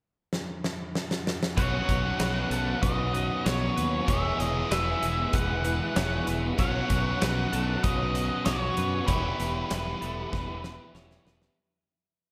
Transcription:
0.33 snare
0.64 snare
0.95 snare
1.11 snare
1.27 snare
1.43 snare
1.56 B1 B2 F#3 B3 C#4 F#4 C#5 F#5, kick, closed hi-hat
1.89 B1, kick, closed hi-hat
2.19 B1 F#3 B3 C#4 F#4 B4, snare, closed hi-hat
2.50 B1 A4, closed hi-hat
2.81 B1 B2 F#3 B3 C#4 F#4 B4 D#5, kick, closed hi-hat
3.14 B4, closed hi-hat
3.44 B1 F#3 B3 C#4 F#4 C#5, snare, closed hi-hat
3.76 D#2 B4, closed hi-hat
4.06 E1 E2 B2 E3 G#3 B3 C#5 E5, kick, closed hi-hat
4.10 E4 G#4
4.40 E1 D#5, closed hi-hat
4.70 E1 G#3 B3 E4 G#4 B4 E5, snare, closed hi-hat
5.02 E1 G#4, closed hi-hat
5.32 E1 E3 G#3 B3 E4 G#4 B4 F#5, kick, closed hi-hat
5.65 B4, closed hi-hat
5.96 E1 G#3 B3 E4 G#4 C#5, snare, closed hi-hat
6.27 E1 B4, snare, closed hi-hat
6.58 B1 B2 F#3 B3 C#4 F#4 C#5 F#5, kick, closed hi-hat
6.90 B1, kick, closed hi-hat
7.20 B1 F#3 B3 C#4 F#4 B4, snare, closed hi-hat
7.53 B1 A4, closed hi-hat
7.83 B1 B2 F#3 B3 C#4 B4 D#5, kick, closed hi-hat
7.87 F#4
8.14 B4, closed hi-hat
8.45 B1 F#3 B3 C#4 F#4 C#5, snare, closed hi-hat
8.77 F#2 B4, closed hi-hat
9.07 E1 E2 B2 E3 G3 B3 G4 B4 C#5, kick, closed hi-hat
9.11 E4
9.40 E1, closed hi-hat
9.70 E1 E3 G3 B3 E4 B4, snare, closed hi-hat
10.01 E1 A4, closed hi-hat
10.31 E1 E3 G3 B3 E4 B4, kick, snare
10.63 B4, snare
10.94 E1 E3 G3 B3 E4 C#5, snare
11.11 snare
11.25 E1 B4, snare
11.42 snare

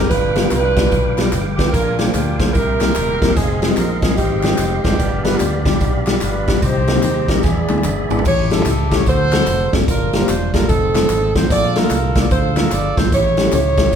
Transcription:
Already playing: G5
0.09 G1 G2 D4 F4 B4 F5 D6, kick, closed hi-hat, tambourine
0.35 B3 D4 F4 G4 B4, snare, closed hi-hat, tambourine
0.44 B3 D4 F4 G4 B4
0.49 C2 D4 F4 B4, clap, closed hi-hat, tambourine
0.77 B3 D4 F4 G4 D5, kick, snare, closed hi-hat, tambourine
0.92 B1, kick, closed hi-hat, tambourine
1.18 B3 D4 F4 G4 D5, snare, clap, closed hi-hat, tambourine
1.33 G1, clap, closed hi-hat, tambourine
1.57 B3 D4 F4 G4 B4, kick, snare, closed hi-hat, tambourine
1.72 A#1 A#2 D4 F4 A#4 G#5, kick, closed hi-hat, tambourine
1.98 A#3 D4 F4 G4 G#4 A#4, snare, closed hi-hat, tambourine
2.07 A#3 D4 F4 C5
2.13 D2 G4, clap, closed hi-hat, tambourine
2.39 A#3 D4 F4 G#4 C5, kick, snare, closed hi-hat, tambourine
2.53 C2 C3 E4 G4 A#4 E5 G5 C6, kick, closed hi-hat, tambourine
2.80 A#3 C4 E4 G4 A#4, snare, clap, closed hi-hat, tambourine
2.95 D#1, clap, closed hi-hat, tambourine
3.21 E1 A#3 C4 E4 G4 A#4, kick, snare, closed hi-hat, tambourine
3.35 F1 G#3 C4 D#4 G#4 D#5 F5 C6, kick, closed hi-hat, tambourine
3.61 G#3 C4 D#4 F4 G#4, snare, closed hi-hat, tambourine
3.70 G#3 C4 D#4 F4 G4
3.76 A#1 A#4, clap, closed hi-hat, tambourine
4.01 G#3 C4 D#4 F4 G#4 A#4, kick, snare, closed hi-hat, tambourine
4.16 G#1 C4 D#4 G4, kick, closed hi-hat, tambourine
4.43 G#3 C4 D#4 F4 A#4, snare, clap, closed hi-hat, tambourine
4.58 F1, clap, closed hi-hat, tambourine
4.83 F#1 G#3 B3 C4 D4 D#4 F4 G4 G#4, kick, snare, closed hi-hat, tambourine
4.99 G1 G2 G4 D5 F5 B5, kick, closed hi-hat, tambourine
5.24 G3 B3 D4 F4 G4 B4, snare, closed hi-hat, tambourine
5.33 G3 B3 D4 F4 G4
5.38 D2 G4, clap, closed hi-hat, tambourine
5.65 G3 B3 D4 F4 G4, kick, snare, closed hi-hat, tambourine
5.81 B1, kick, closed hi-hat, tambourine
6.07 G3 B3 D4 F4 G4, snare, clap, closed hi-hat, tambourine
6.20 G1 D4 F4 B4, clap, closed hi-hat, tambourine
6.47 G3 B3 D4 F4 G4, kick, snare, closed hi-hat, tambourine
6.62 C2 C3 D#4 G4 C5 D#5 A#5, kick, closed hi-hat, tambourine
6.87 G3 A#3 C4 D#4 G4, snare, closed hi-hat, tambourine
6.95 G3 A#3 C4 D#4 G4
7.03 D#2, clap, closed hi-hat, tambourine
7.28 G3 A#3 C4 D#4 G4 A#4, kick, snare, closed hi-hat, tambourine
7.43 E2 E3 B3 D4 G#4 D5 E5 B5, kick, snare, tambourine
7.69 D2 G#3 B3 D4 E4 G#4, clap, high tom, tambourine
7.77 high tom
7.84 G1, clap, mid tom, tambourine
8.10 G#1 G#3 B3 D4 E4 G#4 A4, floor tom, tambourine
8.19 floor tom
8.25 A1 A2 E4 G4 C#5, kick, crash, tambourine
8.51 A3 C#4 E4 G4 A4, snare, closed hi-hat, tambourine
8.58 A3 C#4 E4 G4 A4
8.65 C#2 A4, clap, closed hi-hat, tambourine
8.91 A3 C#4 E4 G4 A4 C#5, kick, snare, closed hi-hat, tambourine
9.06 D2 D3 F#4 A4 C5, kick, closed hi-hat, tambourine
9.32 A3 C4 D4 F#4 A4, snare, clap, closed hi-hat, tambourine
9.47 F1, clap, closed hi-hat, tambourine
9.73 F#1 A3 C4 D4 F#4 A4, kick, snare, closed hi-hat, tambourine
9.88 G1 G2 D4 F4 A#4, kick, closed hi-hat, tambourine
10.13 A#3 D4 F4 G4 A#4, snare, closed hi-hat, tambourine
10.20 A#3 D4 F4 G4 C5
10.29 E1 C5, clap, closed hi-hat, tambourine
10.54 A#3 D4 F4 G4 A4 A#4, kick, snare, closed hi-hat, tambourine
10.69 F1 C4 D#4 A4, kick, closed hi-hat, tambourine
10.95 A3 C4 D#4 F4 A4, snare, clap, closed hi-hat, tambourine
11.09 G#1, clap, closed hi-hat, tambourine
11.35 A1 A3 C4 D#4 F4 A4 C5, kick, snare, closed hi-hat, tambourine
11.50 A#1 A#2 F4 A4 D5, kick, closed hi-hat, tambourine
11.75 A3 A#3 D4 F4 A4 A#4, snare, closed hi-hat, tambourine
11.83 A3 A#3 D4 F4 A4
11.90 C2 A#4, clap, closed hi-hat, tambourine
12.15 A3 A#3 D4 F4 A#4 D5, kick, snare, closed hi-hat, tambourine
12.31 D2 F4 A4 C5, kick, closed hi-hat, tambourine
12.56 A3 A#3 D4 F4 A#4, snare, clap, closed hi-hat, tambourine
12.71 G1 D5, clap, closed hi-hat, tambourine
12.97 G#1 A3 A#3 D4 F4 C5, kick, snare, closed hi-hat, tambourine
13.12 A1 A2 E4 G4 C#5, kick, closed hi-hat, tambourine
13.37 A3 C#4 E4 G4 A4, snare, closed hi-hat, tambourine
13.45 A3 C#4 E4 G4 A4
13.52 C#2 E4 G4 C#5, clap, closed hi-hat, tambourine
13.77 A3 C#4 E4 G4 A4, kick, snare, closed hi-hat, tambourine

